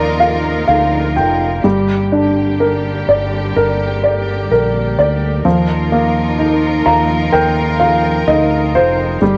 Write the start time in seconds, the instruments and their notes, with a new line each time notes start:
Already playing: fretless electric bass D#2, upright piano F3 A#3 D#4 F4 A#4 D5 D#5, string section F3 A#3 D#4 F4 A#4
0.20 upright piano F4 F5
0.68 fretless electric bass D2, upright piano D#4 F5
1.16 fretless electric bass F1, upright piano F4 G5
1.64 fretless electric bass G1, string section D3 G3 G4, upright piano G3
2.12 upright piano D4
2.60 upright piano A#4
3.08 fretless electric bass G1, upright piano D5
3.56 fretless electric bass G1, upright piano A#4
4.04 upright piano D5
4.52 fretless electric bass A#1, upright piano A#4
4.99 fretless electric bass D2, upright piano D5
5.45 fretless electric bass D#2, upright piano F3, string section F3 D#4 F4 A#4
5.92 upright piano A#3
6.39 upright piano D#4
6.86 fretless electric bass D#2, upright piano F4 A#5
7.33 fretless electric bass D#2, upright piano A#4 G5
7.80 upright piano F4 F5
8.27 fretless electric bass D2, upright piano D#4 D#5
8.74 fretless electric bass F1, upright piano F4 C5
9.21 fretless electric bass G1, string section D3 G3 A#3 G4, upright piano G3